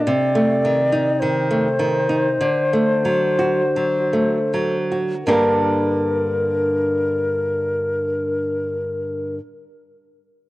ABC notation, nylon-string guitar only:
X:1
M:4/4
L:1/16
Q:1/4=46
K:Gm
V:1 name="Nylon-string guitar"
C, A, E, E E, A, E, E D, A, ^F, ^F F, A, F, F | [G,,D,B,DGB]16 |]